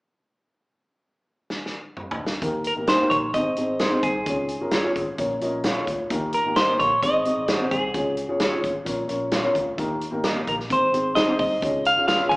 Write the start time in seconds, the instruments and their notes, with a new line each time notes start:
1.50 snare
1.66 snare
1.97 mid tom
2.11 floor tom
2.26 snare
2.41 fingered electric bass D#2, upright piano D#3 A#3 D#4 G4 A#4, kick, closed hi-hat
2.64 clean electric guitar A#4, closed hi-hat
2.76 fingered electric bass G#1, upright piano A#3 D#4 G4 A#4
2.87 clean electric guitar A#3 D#4 G4 C5, snare, closed hi-hat
3.00 upright piano A#3 D#4 G4 A#4
3.10 fingered electric bass A#1, clean electric guitar C#5, kick, closed hi-hat
3.34 upright piano G#2 C4 D#4 G#4 C5, clean electric guitar D#5, kick, closed hi-hat
3.56 fingered electric bass G#1, upright piano C4 D#4 G#4 C5, closed hi-hat
3.79 clean electric guitar D#4 G#4 C5, snare, closed hi-hat
3.92 upright piano C4 D#4 G#4 C5
4.03 fingered electric bass C2, clean electric guitar G#4, kick, closed hi-hat
4.26 fingered electric bass C#2, upright piano C#3 C#4 F4 G#4 C#5, kick, closed hi-hat
4.48 closed hi-hat
4.60 fingered electric bass G1, upright piano C#4 F4 G#4 A#4
4.71 clean electric guitar F4 G#4 C#5, snare, closed hi-hat
4.83 upright piano C#4 F4 G#4 C#5
4.95 fingered electric bass G#1, kick, closed hi-hat
5.18 fingered electric bass A#1, upright piano A#2 C#4 F4 A#4 C#5, kick, closed hi-hat
5.41 fingered electric bass A#1, upright piano C#4 F4 A#4 D#5, closed hi-hat
5.64 clean electric guitar F4 A#4 C#5, upright piano G#4 F5, snare, closed hi-hat
5.87 fingered electric bass D2, upright piano F4 C#5, kick, closed hi-hat
6.10 fingered electric bass D#2, upright piano D#3 A#3 D#4 G4 A#4, kick, closed hi-hat
6.33 clean electric guitar A#4, closed hi-hat
6.45 fingered electric bass G#1, upright piano A#3 D#4 G4 A#4
6.56 clean electric guitar G4 A#4 C5 D#5, snare, closed hi-hat
6.68 upright piano A#3 D#4 G4 A#4
6.79 fingered electric bass A#1, clean electric guitar C#5, kick, closed hi-hat
7.02 fingered electric bass G#1, upright piano G#2 C4 D#4 G#4 C5, clean electric guitar D#5, kick, closed hi-hat
7.25 upright piano C4 D#4 G#4 D#5, closed hi-hat
7.37 fingered electric bass G#1
7.48 clean electric guitar G#4 C5 D#5, snare, closed hi-hat
7.52 clean electric guitar C#5
7.60 upright piano C4 D#4 G#4 C5
7.71 fingered electric bass C2, clean electric guitar G#4, kick, closed hi-hat
7.94 fingered electric bass C#2, upright piano C#3 C#4 F4 G#4 C#5, kick, closed hi-hat
8.17 closed hi-hat
8.28 fingered electric bass G1, upright piano C#4 F4 G#4 C#5
8.40 clean electric guitar F4 G#4 C#5, snare, closed hi-hat
8.50 upright piano C#4 F4 G#4 C#5
8.64 fingered electric bass G#1, kick, closed hi-hat
8.84 fingered electric bass A#1, upright piano A#2 C#4 F4 A#4 C#5, kick, closed hi-hat
9.08 fingered electric bass A#1, upright piano C#4 F4 A#4 C#5, closed hi-hat
9.31 clean electric guitar F4 A#4 C#5, snare, closed hi-hat
9.43 upright piano C#4 F4 A#4 C#5
9.55 fingered electric bass D2, kick, closed hi-hat
9.77 fingered electric bass D#2, upright piano D#3 A#3 D#4 G4 A#4, kick, closed hi-hat
10.01 closed hi-hat
10.11 fingered electric bass G#1, upright piano A#3 D#4 G4 A#4
10.24 clean electric guitar G4 A#4 D#5, snare, closed hi-hat
10.34 upright piano A#3 D#4 G4 A#4
10.47 fingered electric bass A#1, clean electric guitar A#4, kick, closed hi-hat
10.60 snare
10.70 fingered electric bass G#1, upright piano G#2 C4 D#4 G#4 C5, clean electric guitar C5, kick, closed hi-hat
10.92 fingered electric bass G#1, upright piano C4 D#4 G#4 C5, closed hi-hat
11.15 clean electric guitar D#4 G#4 C5 D#5, snare, closed hi-hat
11.27 upright piano C4 D#4 G#4 C5
11.39 fingered electric bass C2, clean electric guitar D#5, kick, open hi-hat
11.61 fingered electric bass C#2, upright piano C#3 C#4 F4 G#4 C#5, kick, closed hi-hat
11.85 clean electric guitar F5, closed hi-hat
11.96 fingered electric bass G1, upright piano C#4 F4 G#4 C#5
12.07 clean electric guitar F4 G#4 C#5 F5, snare, closed hi-hat
12.20 upright piano C#4 F4 G#4 C#5
12.29 fingered electric bass G#1, clean electric guitar G#5, kick, closed hi-hat